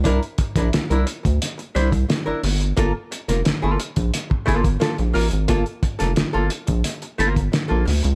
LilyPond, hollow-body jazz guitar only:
\new Staff \with { instrumentName = "Hollow-body jazz guitar" } { \time 4/4 \key g \dorian \tempo 4 = 88 <d' e' bes'>16 r8 <d' e' bes'>16 r16 <d' e' bes'>16 r4 <d' e' c''>16 r8 <d' e' bes'>16 r8 | <bes f' a'>16 r8 <bes f' bes'>16 r16 <bes f' a'>16 r4 <bes f' a'>16 r16 <bes f' a'>16 r16 <bes f' bes'>16 r16 | <bes f' a'>16 r8 <bes f' a'>16 r16 <bes f' a'>16 r4 <bes f' bes'>16 r8 <bes f' a'>16 r8 | }